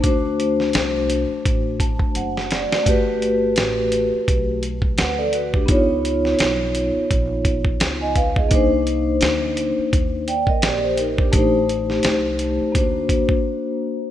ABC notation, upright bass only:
X:1
M:4/4
L:1/16
Q:"Swing 16ths" 1/4=85
K:Gm
V:1 name="Upright bass" clef=bass
D,,4 C,,3 z A,,,3 z ^F,,,3 z | G,,,4 A,,,3 z =B,,,4 D,,4 | ^C,,4 =B,,,3 z _B,,,4 C,,4 | C,,4 D,,3 z E,,3 z B,,,4 |
A,,,4 C,,3 z D,,3 z4 z |]